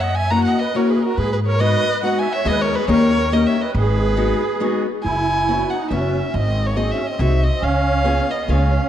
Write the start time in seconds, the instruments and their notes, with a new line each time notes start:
Already playing: upright bass F#2
0.00 accordion D#5, violin F#5
0.15 accordion E5, violin G#5
0.30 steel-string acoustic guitar A#3 C#4 E4 F#4, accordion F#5, violin A#5
0.45 accordion D#5, violin F#5
0.59 accordion B4, violin D#5
0.75 steel-string acoustic guitar A#3 C#4 E4 F#4, accordion A#4, violin C#5
0.89 accordion G#4, violin B4
1.03 accordion F#4, violin A#4
1.17 upright bass G#2, accordion G#4, violin B4
1.33 accordion G#4, violin B4
1.46 accordion A#4, violin C#5
1.60 steel-string acoustic guitar G#3 B3 D#4 F#4, accordion B4, violin D#5
2.03 steel-string acoustic guitar G#3 B3 D#4 F#4, accordion D#5, violin F#5
2.19 accordion E5, violin G#5
2.33 accordion C#5, violin E5
2.45 upright bass D#2, steel-string acoustic guitar G#3 B3 D#4 G#4, violin D#5
2.50 accordion B4
2.61 accordion A#4, violin C#5
2.75 accordion G#4, violin B4
2.88 upright bass D#2, steel-string acoustic guitar A#3 C#4 D#4 G4, accordion A#4, violin C#5
3.32 steel-string acoustic guitar A#3 C#4 D#4 G4, accordion A#4, violin D#5
3.47 accordion C#5, violin E5
3.60 accordion B4, violin D#5
3.75 upright bass G#1, accordion G#4, violin B4
4.17 steel-string acoustic guitar G#3 B3 D#4 F#4
4.60 steel-string acoustic guitar G#3 B3 D#4 F#4
5.03 upright bass F#1, accordion E4, violin G#5
5.48 steel-string acoustic guitar B3 C#4 E4 F#4
5.70 accordion D#4, violin F#5
5.91 upright bass F#1, steel-string acoustic guitar B3 C#4 E4 F#4, accordion C#4, violin E5
6.29 accordion C#4, violin E5
6.34 upright bass G#1, accordion C4, violin D#5
6.66 accordion A#3, violin C#5
6.76 steel-string acoustic guitar C4 D#4 F#4 G#4, accordion C4, violin D#5
6.91 accordion C#4, violin E5
7.07 accordion C4, violin D#5
7.19 upright bass C2, steel-string acoustic guitar C4 D#4 F#4 G#4, accordion C4, violin E5
7.43 accordion C4, violin D#5
7.61 upright bass C#2, accordion C#4, violin F5
8.04 steel-string acoustic guitar B3 C#4 F4 G#4
8.28 accordion B3, violin D#5
8.48 upright bass C#2, steel-string acoustic guitar B3 C#4 F4 G#4, accordion C#4, violin F5